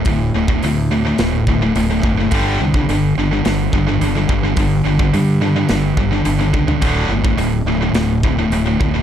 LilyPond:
<<
  \new Staff \with { instrumentName = "Distorted electric guitar" } { \clef bass \time 4/4 \key g \dorian \tempo 4 = 106 <d, a,>8 <d, a,>16 <d, a,>16 <d, a,>8 <d, a,>16 <d, a,>16 <d, a,>8 <d, a,>16 <d, a,>16 <d, a,>16 <d, a,>16 <d, a,>16 <d, a,>16 | <g, d g>8 <g, d>16 <g, d>16 <g, d>8 <g, d>16 <g, d>16 <g, d>8 <g, d>16 <g, d>16 <g, d>16 <g, d>16 <g, d>16 <g, d>16 | <g, d>8 <g, d>16 <g, d>16 <g, d>8 <g, d>16 <g, d>16 <g, d>8 <g, d>16 <g, d>16 <g, d>16 <g, d>16 <g, d>16 <g, d>16 | <d, a, d>8 <d, a,>16 <d, a,>16 <d, a,>8 <d, a,>16 <d, a,>16 <d, a,>8 <d, a,>16 <d, a,>16 <d, a,>16 <d, a,>16 <d, a,>16 <d, a,>16 | }
  \new Staff \with { instrumentName = "Distorted electric guitar" } { \clef bass \time 4/4 \key g \dorian <d, a,>8 <d, a,>16 <d, a,>16 <d, a,>8 <d, a,>16 <d, a,>16 <d, a,>8 <d, a,>16 <d, a,>16 <d, a,>16 <d, a,>16 <d, a,>16 <d, a,>16 | <g, d g>8 <g, d>16 <g, d>16 <g, d>8 <g, d>16 <g, d>16 <g, d>8 <g, d>16 <g, d>16 <g, d>16 <g, d>16 <g, d>16 <g, d>16 | <g, d>8 <g, d>16 <g, d>16 <g, d>8 <g, d>16 <g, d>16 <g, d>8 <g, d>16 <g, d>16 <g, d>16 <g, d>16 <g, d>16 <g, d>16 | <d, a, d>8 <d, a,>16 <d, a,>16 <d, a,>8 <d, a,>16 <d, a,>16 <d, a,>8 <d, a,>16 <d, a,>16 <d, a,>16 <d, a,>16 <d, a,>16 <d, a,>16 | }
  \new Staff \with { instrumentName = "Fingered electric bass" } { \clef bass \time 4/4 \key g \dorian d,,8 d,,8 d,4 d,,8 d,,8 d,,8 fis,,8 | g,,8 c,8 g,,8 g,,8 g,,8 g,,8 g,,8 g,,8 | g,,8 g,,8 g,4 g,,8 g,,8 g,,8 cis,8 | d,,8 g,,8 d,,8 d,,8 d,,8 d,,8 d,,8 d,,8 | }
  \new DrumStaff \with { instrumentName = "Drums" } \drummode { \time 4/4 <hho bd>8. bd16 hho4 <hho sn>8 bd8 hho8 bd8 | <hho bd>8. bd16 hho4 <hho sn>8 bd8 hho8 bd8 | <hho bd>8. bd16 hho4 <hho sn>8 bd8 hho8 bd16 tomfh16 | <hho bd>8. bd16 hho4 <hho sn>8 bd8 hho8 bd8 | }
>>